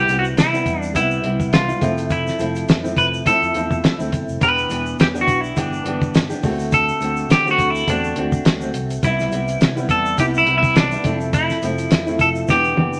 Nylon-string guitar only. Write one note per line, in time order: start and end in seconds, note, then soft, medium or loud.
0.08 0.53 C3 medium
0.08 0.53 G3 medium
0.08 0.52 B3 medium
0.08 0.52 E4 medium
0.53 0.93 C3 soft
0.53 0.94 G3 medium
0.53 0.95 B3 medium
0.53 0.95 E4 medium
0.94 1.22 C3 medium
0.94 1.23 G3 medium
0.94 1.24 B3 medium
0.94 1.25 E4 medium
1.23 1.68 C3 medium
1.23 1.69 G3 medium
1.23 1.69 B3 medium
1.23 1.66 E4 medium
1.68 1.81 G3 soft
1.68 1.82 B3 soft
1.68 1.81 E4 medium
1.81 2.37 F3 medium
1.81 2.38 A3 medium
1.81 2.39 C4 medium
1.81 2.41 E4 medium
2.38 2.84 F3 medium
2.38 2.84 A3 medium
2.38 2.83 C4 medium
2.38 2.82 E4 medium
2.83 3.24 F3 soft
2.83 3.25 A3 soft
2.83 3.25 C4 medium
2.83 3.25 E4 medium
3.25 3.52 F3 medium
3.25 3.54 A3 medium
3.25 3.55 C4 medium
3.25 3.56 E4 medium
3.54 3.99 F3 medium
3.54 4.00 A3 medium
3.54 3.99 C4 medium
3.54 3.97 E4 medium
3.98 4.41 A3 soft
3.98 4.42 C4 medium
3.98 4.41 E4 medium
4.40 4.68 E3 medium
4.40 4.69 B3 medium
4.40 4.71 D4 medium
4.40 4.71 G4 medium
4.69 5.14 E3 medium
4.69 5.15 B3 medium
4.69 5.14 D4 medium
4.69 5.13 G4 medium
5.14 5.55 E3 medium
5.14 5.56 B3 medium
5.14 5.56 D4 medium
5.14 5.56 G4 medium
5.56 5.83 E3 medium
5.56 5.85 B3 medium
5.56 5.86 D4 medium
5.56 5.86 G4 medium
5.84 6.30 E3 medium
5.84 6.31 B3 medium
5.84 6.30 D4 medium
5.84 6.28 G4 medium
6.30 6.43 B3 soft
6.30 6.44 D4 soft
6.30 6.43 G4 medium
6.43 6.99 D3 medium
6.43 7.00 A3 medium
6.43 7.02 C4 medium
6.43 7.02 F#4 medium
7.00 7.45 D3 medium
7.00 7.46 A3 medium
7.00 7.45 C4 medium
7.00 7.44 F#4 medium
7.45 7.86 D3 medium
7.45 7.87 A3 medium
7.45 7.88 C4 medium
7.45 7.87 F#4 medium
7.87 8.14 D3 medium
7.87 8.16 A3 medium
7.87 8.17 C4 medium
7.87 8.17 F#4 medium
8.15 8.61 D3 medium
8.15 8.61 A3 medium
8.15 8.61 C4 medium
8.15 8.59 F#4 medium
8.60 9.03 A3 soft
8.60 9.04 C4 medium
8.60 9.03 F#4 medium
9.02 9.30 C3 medium
9.02 9.31 G3 medium
9.02 9.33 B3 medium
9.02 9.33 E4 medium
9.31 9.76 C3 medium
9.31 9.77 G3 medium
9.31 9.76 B3 medium
9.31 9.75 E4 medium
9.76 10.16 C3 medium
9.76 10.17 G3 medium
9.76 10.18 B3 medium
9.76 10.18 E4 medium
10.18 10.45 C3 medium
10.18 10.47 G3 medium
10.18 10.48 B3 medium
10.18 10.48 E4 medium
10.46 10.91 C3 medium
10.46 10.92 G3 medium
10.46 10.92 B3 medium
10.46 10.90 E4 medium
10.91 11.04 G3 soft
10.91 11.05 B3 soft
10.91 11.04 E4 medium
11.04 11.60 F3 medium
11.04 11.62 A3 medium
11.04 11.63 C4 medium
11.04 11.65 E4 medium
11.62 12.07 F3 medium
11.62 12.07 A3 medium
11.62 12.06 C4 medium
11.62 12.05 E4 medium
12.07 12.48 F3 medium
12.07 12.49 A3 medium
12.07 12.49 C4 medium
12.07 12.49 E4 medium
12.48 12.76 E3 medium
12.48 12.77 B3 medium
12.48 12.78 D4 medium
12.48 12.79 G4 medium
12.77 13.00 E3 medium
12.77 13.00 B3 medium
12.77 13.00 D4 medium
12.77 13.00 G4 medium